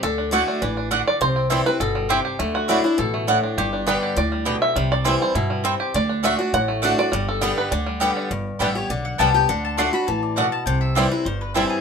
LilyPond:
<<
  \new Staff \with { instrumentName = "Mandolin" } { \time 4/4 \key g \major \tempo 4 = 203 r1 | r1 | r1 | r1 |
r1 | r1 | r1 | r4 e''8 cis''8 d''8 fis''8 a''8 g''8 |
fis''8 a''8 c'''8 b''8 a''8 d''8 fis''8 a''8 | g''8 e''8 d''8 b'8 c''8 b'8 a'8 aes'8 | }
  \new Staff \with { instrumentName = "Mandolin" } { \time 4/4 \key g \major r4 <a fis' d'' fis''>8 r4. <a fis' d'' fis''>8 r8 | r4 <c' e' c'' g''>8 r4. <c' e' c'' g''>8 r8 | r4 <a e' d'' fis''>8 r4. <a e' d'' fis''>8 r8 | r4 <b g' d'' g''>8 r4. <b g' d'' g''>8 r8 |
r4 <c' e' c'' g''>8 r4. <c' e' c'' g''>8 r8 | r4 <a fis' d'' fis''>8 r4. <a fis' d'' fis''>8 r8 | r4 <b g' d'' g''>8 r4. <b g' d'' g''>8 r8 | r4 <b g' d'' g''>8 r4. <b g' d'' g''>8 r8 |
r4 <a fis' d'' fis''>8 r4. <a fis' d'' fis''>8 r8 | r4 <c' e' c'' g''>8 r4. <c' e' c'' g''>8 r8 | }
  \new Staff \with { instrumentName = "Five-string banjo" } { \time 4/4 \key g \major << { a'4 e'4 r4. d''8 | c''4. b'8 a'4 g'8 r8 | r8 fis'4. a'4. r8 | g'4 b'4 d''4. e''8~ |
e''8 d''4 c''8 r2 | d''4 e''4 fis''4. d''8~ | d''8 a'4 b'8 r2 | r4 <g b d'>8 r4. <g b d'>8 r8 |
r4 <a d'>8 r4. <a d'>8 r8 | r4 <g c' e'>8 r4. <g c' e'>8 r8 | } \\ { r8 d'4 d'8 d'8 d'8 d'4 | r8 c'8 e'4. g4 g'8 | a4 d'8 d'4 a8 d'8 d'8 | r8 d'4 g'4 g8 d4 |
g4 e'4 e'8 g8 c'8 g'8 | r8 d'4 d'4 a8 d'4 | g4 g4 d'8 g8 d8 d'8 | r1 |
r1 | r1 | } >> }
  \new Staff \with { instrumentName = "Steel-string acoustic guitar" } { \clef bass \time 4/4 \key g \major << { r4 <d a d' fis'>4 r2 | r4 <e g c' e'>8 <c' e'>8 r2 | r4 <fis a d' e'>8 <d' e'>8 r2 | r4 <d g b g'>4 r2 |
r4 <e g c' e'>4 r2 | r4 <d a d' fis'>8 <d' fis'>8 r4 <d a d' fis'>8 <d' fis'>8 | r4 <d g b g'>4 r4 <d g b g'>4 | r4 <d g b g'>8 <b g'>8 r4 <d g b g'>8 <b g'>8 |
r4 <d a d' fis'>8 <d' fis'>8 r2 | r4 <e g c' e'>8 <c' e'>8 r4 <e g c' e'>4 | } \\ { d2 e4 d4 | c2 b,4 c4 | d2 b,4 a,4 | g,2 a,4 b,4 |
c2 b,4 c4 | d2 a,2 | g,2 d2 | g,2 d2 |
d2 e4 b,4 | c2 g,2 | } >> }
  \new Staff \with { instrumentName = "Upright bass" } { \clef bass \time 4/4 \key g \major d,2 a,,2 | c,2 g,,2 | d,2 a,,2 | g,,2 d,2 |
c,2 g,2 | d,2 a,,2 | g,,2 d,2 | g,,4 a,,4 b,,4 c,4 |
d,2 a,,2 | c,2 g,,2 | }
>>